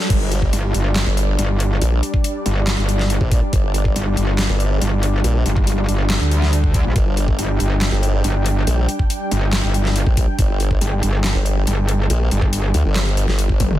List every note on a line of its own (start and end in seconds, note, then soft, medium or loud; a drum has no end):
0.00 riser medium
0.10 0.51 G1 loud
0.10 13.78 G3 medium
0.10 13.78 D4 medium
0.10 6.94 D5 medium
0.10 kick loud
0.10 closed hi-hat medium
0.10 crash loud
0.32 closed hi-hat medium
0.42 kick medium
0.53 0.73 G1 loud
0.53 closed hi-hat medium
0.74 1.05 G1 loud
0.74 closed hi-hat medium
0.96 snare loud
0.96 clap medium
0.96 closed hi-hat medium
1.06 1.37 G1 loud
1.17 closed hi-hat medium
1.39 1.80 G1 loud
1.39 closed hi-hat medium
1.60 open hi-hat medium
1.82 2.01 A#1 loud
1.82 closed hi-hat medium
2.03 closed hi-hat medium
2.14 kick medium
2.24 closed hi-hat medium
2.46 2.76 G1 medium
2.46 closed hi-hat medium
2.67 snare loud
2.67 clap medium
2.67 closed hi-hat medium
2.78 3.19 G1 loud
2.89 closed hi-hat medium
2.99 snare soft
3.10 closed hi-hat medium
3.21 3.41 A#1 loud
3.21 kick medium
3.32 kick loud
3.32 open hi-hat medium
3.53 3.94 G1 loud
3.53 kick loud
3.53 closed hi-hat medium
3.74 closed hi-hat medium
3.85 kick medium
3.96 4.15 G1 loud
3.96 closed hi-hat medium
4.17 4.48 G1 loud
4.17 closed hi-hat medium
4.39 snare loud
4.39 clap medium
4.39 closed hi-hat medium
4.49 4.80 G1 loud
4.60 closed hi-hat medium
4.81 5.23 G1 loud
4.81 closed hi-hat medium
5.03 open hi-hat medium
5.24 5.44 A#1 loud
5.24 closed hi-hat medium
5.46 5.87 G1 loud
5.46 closed hi-hat soft
5.57 kick medium
5.67 closed hi-hat medium
5.89 6.19 G1 medium
5.89 closed hi-hat medium
6.10 snare loud
6.10 clap medium
6.10 closed hi-hat medium
6.21 6.83 D2 loud
6.31 closed hi-hat soft
6.42 snare soft
6.53 closed hi-hat medium
6.64 kick medium
6.74 kick loud
6.74 open hi-hat medium
6.85 6.94 A#1 loud
6.96 7.37 G1 loud
6.96 13.79 G5 medium
6.96 kick loud
6.96 closed hi-hat medium
7.17 closed hi-hat medium
7.28 kick medium
7.39 7.58 G1 loud
7.39 closed hi-hat medium
7.60 7.91 G1 medium
7.60 closed hi-hat medium
7.81 snare loud
7.81 clap medium
7.81 closed hi-hat medium
7.92 8.23 G1 loud
8.03 closed hi-hat medium
8.24 8.65 G1 loud
8.24 closed hi-hat medium
8.46 open hi-hat medium
8.67 8.87 A#1 loud
8.67 closed hi-hat medium
8.89 closed hi-hat medium
8.99 kick medium
9.10 closed hi-hat medium
9.31 9.62 G1 medium
9.31 closed hi-hat medium
9.53 snare loud
9.53 clap medium
9.53 closed hi-hat medium
9.64 10.05 G1 loud
9.74 closed hi-hat medium
9.85 snare soft
9.96 closed hi-hat medium
10.07 10.26 A#1 loud
10.07 kick medium
10.17 kick loud
10.17 open hi-hat medium
10.39 10.80 G1 loud
10.39 kick loud
10.39 closed hi-hat medium
10.60 closed hi-hat medium
10.71 kick medium
10.81 11.01 G1 loud
10.81 closed hi-hat medium
11.03 11.33 G1 loud
11.03 closed hi-hat medium
11.24 snare loud
11.24 clap medium
11.24 closed hi-hat medium
11.35 11.66 G1 loud
11.46 closed hi-hat medium
11.67 12.08 G1 loud
11.67 closed hi-hat medium
11.89 open hi-hat loud
12.10 12.30 A#1 loud
12.10 closed hi-hat medium
12.31 12.73 G1 loud
12.31 closed hi-hat medium
12.42 kick medium
12.53 closed hi-hat medium
12.74 12.83 D2 loud
12.74 closed hi-hat medium
12.85 13.26 G1 loud
12.96 snare loud
12.96 clap medium
12.96 closed hi-hat medium
13.17 closed hi-hat medium
13.28 13.79 G1 loud
13.28 snare soft
13.39 closed hi-hat medium
13.49 kick medium
13.60 kick loud
13.60 open hi-hat medium
13.60 high tom medium
13.71 mid tom medium